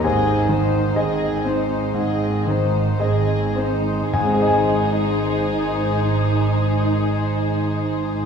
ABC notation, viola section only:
X:1
M:4/4
L:1/8
Q:1/4=58
K:Ab
V:1 name="Viola section"
C E C E C E C E | E8 |]